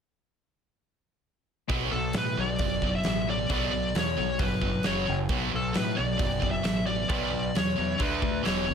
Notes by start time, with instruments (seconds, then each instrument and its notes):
1.68 fingered electric bass B1, distorted electric guitar B2 F#3 B3, kick, open hi-hat
1.92 fingered electric bass B1, distorted electric guitar B2 F#3, lead electric guitar A4
2.13 fingered electric bass A2, distorted electric guitar B2 F#3, snare, open hi-hat
2.18 lead electric guitar B4
2.38 fingered electric bass B1, distorted electric guitar B2 F#3, lead electric guitar D5
2.59 fingered electric bass F#1, distorted electric guitar B2 F#3, kick, open hi-hat
2.82 distorted electric guitar B2 F#3, kick
2.96 lead electric guitar E5
3.04 fingered electric bass A1, distorted electric guitar B2 F#3, snare, open hi-hat
3.27 distorted electric guitar B2 F#3, lead electric guitar D5
3.49 fingered electric bass B1, distorted electric guitar B2 F#3 B3, kick, open hi-hat
3.54 lead electric guitar D5
3.72 distorted electric guitar B2 F#3
3.95 fingered electric bass E2, distorted electric guitar B2 F#3, lead electric guitar C#5, snare, open hi-hat
4.18 fingered electric bass B1, distorted electric guitar B2 F#3
4.39 fingered electric bass G1, distorted electric guitar B2 F#3, lead electric guitar B4, kick, open hi-hat
4.62 distorted electric guitar B2 F#3, kick
4.83 fingered electric bass F#1, distorted electric guitar F#2, lead electric guitar C#5, snare, open hi-hat
4.87 distorted electric guitar C#3 F#3
5.09 fingered electric bass F#1, distorted electric guitar F#2 C#3
5.29 fingered electric bass B1, distorted electric guitar B2 F#3 B3, kick, open hi-hat
5.52 fingered electric bass B1, distorted electric guitar B2 F#3, lead electric guitar A4
5.74 fingered electric bass A2, distorted electric guitar B2 F#3, lead electric guitar B4, snare, open hi-hat
5.97 fingered electric bass B1, distorted electric guitar B2 F#3, lead electric guitar D5
6.19 fingered electric bass F#1, distorted electric guitar B2 F#3, kick, open hi-hat
6.42 distorted electric guitar B2 F#3, kick
6.51 lead electric guitar E5
6.64 fingered electric bass A1, distorted electric guitar B2 F#3, snare, open hi-hat
6.86 distorted electric guitar B2 F#3, lead electric guitar D5
7.09 fingered electric bass B1, distorted electric guitar B2 F#3 B3, lead electric guitar D5, kick, open hi-hat
7.33 distorted electric guitar B2 F#3
7.55 fingered electric bass E2, distorted electric guitar B2 F#3, lead electric guitar C#5, snare, open hi-hat
7.78 fingered electric bass E2, distorted electric guitar B2 F#3
7.99 fingered electric bass D2, distorted electric guitar D3 A3 D4, lead electric guitar B4, kick, open hi-hat
8.22 distorted electric guitar D3 A3, kick
8.43 fingered electric bass E1, distorted electric guitar E2 B2 E3, lead electric guitar C#5, snare, open hi-hat
8.68 fingered electric bass C#2, distorted electric guitar E2 B2